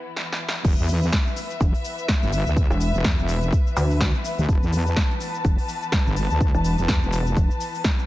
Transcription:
Already playing: E3 B3 E4
0.17 snare
0.32 snare
0.49 snare
0.64 E1 E3 B3 B4 E5, kick, closed hi-hat, crash, shaker
0.79 E2, shaker
0.89 open hi-hat, shaker
1.03 closed hi-hat, shaker
1.13 kick, snare, closed hi-hat, shaker
1.27 shaker
1.36 open hi-hat, shaker
1.51 closed hi-hat, shaker
1.60 E1, kick, closed hi-hat, shaker
1.75 open hi-hat, shaker
1.84 open hi-hat, shaker
1.98 closed hi-hat, shaker
2.08 kick, snare, closed hi-hat, shaker
2.23 G1, shaker
2.32 open hi-hat, shaker
2.46 D2, closed hi-hat, shaker
2.57 kick, closed hi-hat, shaker
2.70 E1, shaker
2.80 open hi-hat, shaker
2.94 E1, closed hi-hat, shaker
3.04 E2, kick, snare, closed hi-hat, shaker
3.18 E1, shaker
3.29 open hi-hat, shaker
3.43 closed hi-hat, shaker
3.53 kick, closed hi-hat, shaker
3.67 shaker
3.77 D2, open hi-hat, shaker
3.91 open hi-hat, shaker
4.01 kick, snare, shaker
4.15 shaker
4.25 open hi-hat, shaker
4.39 D2, closed hi-hat, shaker
4.49 E1 A5, kick, closed hi-hat, shaker
4.63 E2, shaker
4.73 open hi-hat, shaker
4.87 closed hi-hat, shaker
4.96 kick, snare, closed hi-hat, shaker
5.11 shaker
5.21 open hi-hat, shaker
5.34 closed hi-hat, shaker
5.45 E1, kick, closed hi-hat, shaker
5.58 open hi-hat, shaker
5.68 open hi-hat, shaker
5.82 closed hi-hat, shaker
5.92 kick, snare, closed hi-hat, shaker
6.07 G1, shaker
6.16 open hi-hat, shaker
6.30 D2, closed hi-hat, shaker
6.40 kick, closed hi-hat, shaker
6.55 E1, shaker
6.64 open hi-hat, shaker
6.78 E1, closed hi-hat, shaker
6.88 E2, kick, snare, closed hi-hat, shaker
7.03 E1, shaker
7.13 open hi-hat, shaker
7.26 closed hi-hat, shaker
7.37 E1, kick, closed hi-hat, shaker
7.51 shaker
7.60 open hi-hat, shaker
7.75 open hi-hat, shaker
7.84 kick, snare, shaker
7.99 shaker

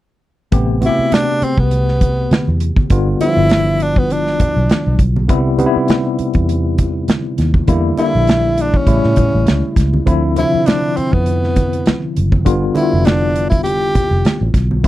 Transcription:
0.52 A1 C3 A3 B3 G4, kick, closed hi-hat
0.81 C3 A3 B3 F#4, closed hi-hat, muted conga
0.86 E4 G4
0.99 muted fingered electric bass stroke
1.12 D4, snare, closed hi-hat, high conga
1.42 C4, muted fingered electric bass stroke, closed hi-hat
1.58 C2 B3, kick
1.71 closed hi-hat, muted conga
1.88 snare
2.01 kick, closed hi-hat, muted conga
2.31 muted fingered electric bass stroke, snare, closed hi-hat, high conga
2.48 E2
2.60 closed hi-hat
2.76 kick, high conga
2.90 G1 D3 G3 B3 F4, kick, closed hi-hat
3.20 D3 G3 B3 E4, closed hi-hat, muted conga
3.28 F3
3.37 G1
3.49 snare, closed hi-hat, high conga
3.80 D4, closed hi-hat
3.96 B3, kick
4.10 D4, closed hi-hat, muted conga
4.27 snare
4.40 muted fingered electric bass stroke, kick, closed hi-hat, muted conga, low conga
4.56 B1
4.69 snare, closed hi-hat, high conga
4.87 B1
4.99 B1, kick, closed hi-hat
5.16 high conga
5.28 C2 C3 G3 B3 E4, kick, closed hi-hat
5.58 C3 G3 B3 D#4, closed hi-hat, muted conga
5.66 E4
5.76 muted fingered electric bass stroke
5.88 snare, closed hi-hat, high conga
6.19 muted fingered electric bass stroke, closed hi-hat
6.34 E2, kick, closed hi-hat
6.49 closed hi-hat, muted conga
6.78 kick, closed hi-hat, muted conga
7.08 snare, closed hi-hat, high conga
7.38 D#2, snare, closed hi-hat
7.54 kick, high conga
7.67 E2 D3 G3 A#3 E4, kick, closed hi-hat
7.97 D3 G3 A#3 E4, closed hi-hat, muted conga
8.15 A#1
8.27 snare, closed hi-hat, high conga
8.57 closed hi-hat
8.62 D4
8.74 C#4, kick
8.86 A1 C#3 G3 A3 E4, kick, closed hi-hat
9.04 A2, snare
9.16 A2, kick, closed hi-hat, muted conga, low conga
9.35 A1
9.47 C#2, snare, closed hi-hat, high conga
9.76 C#2, kick, snare, closed hi-hat
9.93 high conga
10.06 D2 D3 F3 C4 E4, kick, closed hi-hat
10.36 C3 D3 F3 E4, closed hi-hat, muted conga
10.54 muted fingered electric bass stroke
10.66 D4, snare, closed hi-hat, high conga
10.97 C4, muted fingered electric bass stroke, closed hi-hat
11.13 F2 B3, kick
11.26 closed hi-hat, muted conga
11.44 snare
11.56 kick, closed hi-hat, muted conga
11.73 closed hi-hat
11.86 snare, closed hi-hat, high conga
12.17 F#1, closed hi-hat
12.32 kick, high conga
12.45 G1 D3 G3 B3 F4, kick, closed hi-hat
12.74 D3 G3 B3 E4, closed hi-hat, muted conga
12.83 F4
12.93 F1
13.05 D4, snare, closed hi-hat, high conga
13.36 closed hi-hat
13.50 E4, kick, closed hi-hat
13.64 G4, closed hi-hat, muted conga
13.95 muted fingered electric bass stroke, kick, closed hi-hat, muted conga, low conga
14.11 F1
14.25 snare, closed hi-hat, high conga
14.41 A1
14.54 B1, kick, snare, closed hi-hat
14.71 high conga
14.84 C2 C3 G3 B3, kick, closed hi-hat

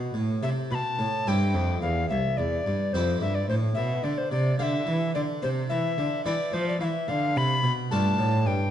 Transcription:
Already playing: B2 G4
0.14 A2
0.42 C3 E5
0.71 B2 A5 B5
0.98 A2
1.26 G2 C4 E4 G4 G5
1.54 F2
1.81 E2 F5
2.09 C2 E5
2.37 E2 D5
2.65 G2
2.93 F2 C4 E4 G4 C5
3.21 G2 E5
3.35 D5
3.49 A2 C5
3.75 B2 E5
4.04 D3 D5
4.18 C5
4.32 C3 D5
4.59 D3 G4 E5 F5
4.87 E3
5.15 D3 D5
5.42 C3 C5
5.69 E3 E5
5.98 D3
6.25 E3 E4 G4 D5
6.53 F3 C5
6.68 D5
6.80 E3 F5
6.84 E5
7.08 D3 F5
7.36 C3 B5
7.63 B2
7.91 G2 A3 D4 F4 A5
8.18 A2
8.46 G2 G5

